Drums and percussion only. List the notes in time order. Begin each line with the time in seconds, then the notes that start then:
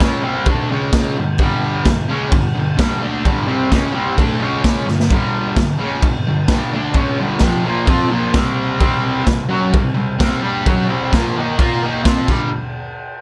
0.00 kick, snare, crash
0.46 kick, crash
0.93 kick, snare, crash
1.38 kick, crash
1.85 kick, snare, crash
2.32 kick, crash
2.79 kick, snare, crash
3.25 kick, crash
3.72 kick, snare, crash
4.18 kick, crash
4.64 kick, snare, crash
4.88 snare
5.00 snare
5.11 kick, crash
5.56 kick, snare, crash
6.02 kick, crash
6.48 kick, snare, crash
6.94 kick, crash
7.39 kick, snare, crash
7.87 kick, crash
8.34 kick, snare, crash
8.80 kick, crash
9.27 kick, snare, crash
9.73 kick, crash
10.20 kick, snare, crash
10.66 kick, crash
11.13 kick, snare, crash
11.59 kick, crash
12.05 kick, snare, crash
12.28 kick, crash